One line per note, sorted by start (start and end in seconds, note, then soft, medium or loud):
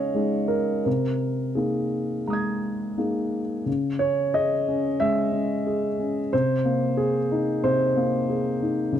0.00 0.89 C#3 soft
0.00 0.14 G#3 soft
0.00 0.57 C#4 soft
0.00 0.15 D#4 soft
0.00 0.16 G#4 soft
0.00 0.49 C#5 medium
0.00 0.89 D#5 medium
0.00 0.89 F5 medium
0.14 0.81 G#3 soft
0.14 0.81 D#4 soft
0.14 0.82 G#4 soft
0.48 0.84 A#4 medium
0.85 1.55 C3 soft
0.85 1.57 A#4 soft
1.55 2.23 A#3 soft
1.55 2.23 D#4 soft
1.55 2.97 G#4 soft
2.27 3.40 G#3 soft
2.27 3.63 A#5 soft
2.27 3.64 D#6 soft
2.33 3.66 G#6 soft
2.98 3.63 A#3 soft
2.98 3.63 D#4 soft
2.98 3.63 G#4 soft
3.66 4.96 C#3 soft
3.99 4.54 C#4 soft
3.99 4.33 C#5 medium
4.34 4.87 G#4 soft
4.34 5.00 D#5 medium
4.68 5.21 C#4 soft
5.00 5.53 G#3 soft
5.00 6.32 E5 medium
5.32 5.85 C#4 soft
5.67 6.19 G#4 soft
5.99 6.33 C#4 soft
6.33 7.60 C3 soft
6.33 6.99 C5 medium
6.65 7.18 A#3 soft
6.97 7.63 G#4 medium
7.32 7.84 D#4 soft
7.64 8.89 C3 soft
7.64 8.61 C5 medium
7.97 8.48 A#3 soft
8.30 8.81 G#4 soft
8.63 8.94 D#4 soft
8.92 9.00 C#3 soft